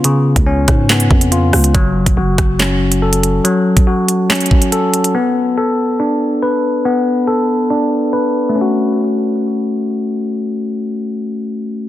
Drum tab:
HH |x-----x-----x---x-x---x-x---o-x-|x-----x-----x---x-----x---x-x---|x-----x-----x---xxxx--x-x---x-x-|--------------------------------|
CP |----------------x---------------|----------------x---------------|----------------x---------------|--------------------------------|
SD |------------r---o-----------r---|------------r---o---------------|----------------o---------------|--------------------------------|
BD |------o-----o-------o-----------|o-----o-----o-------------------|------o-------------o-----------|--------------------------------|

HH |--------------------------------|--------------------------------|--------------------------------|
CP |--------------------------------|--------------------------------|--------------------------------|
SD |--------------------------------|--------------------------------|--------------------------------|
BD |--------------------------------|--------------------------------|--------------------------------|